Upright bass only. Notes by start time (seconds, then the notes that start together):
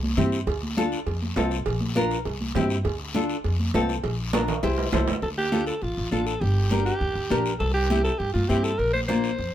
Already playing: C2
0.17 G2
0.47 D2
1.07 F2
1.36 C2
1.66 A#1
2.25 C2
2.55 G2
2.85 D2
3.45 F2
3.74 C2
4.04 A#1
4.63 C2
4.93 C2
5.08 D2
5.22 D2
5.82 A1
5.98 A1
6.12 A1
6.41 G1
7.01 D2
7.15 D2
7.31 A#1
7.60 C2
8.20 G2
8.35 G2
8.50 G2
8.79 A#1
9.39 F2